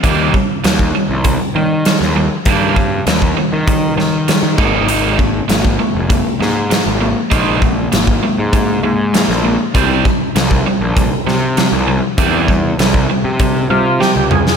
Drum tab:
HH |x---x---x---x---|x---x---x---x---|x---x---x---x---|x---x---x---x---|
SD |----o-------oo--|----o-----o-o---|----o-----o-o---|----o-------oo--|
T2 |----------------|----------------|----------------|----------------|
BD |o-o--o--o-------|o-o--o--o-----o-|--o--o--o-------|o-o--o--o-------|

HH |x---x---x---x---|x---x---x-------|
SD |----o-----o-o---|----o-------o--o|
T2 |----------------|--------------o-|
BD |o-o--o--o-------|o-o--o--o-------|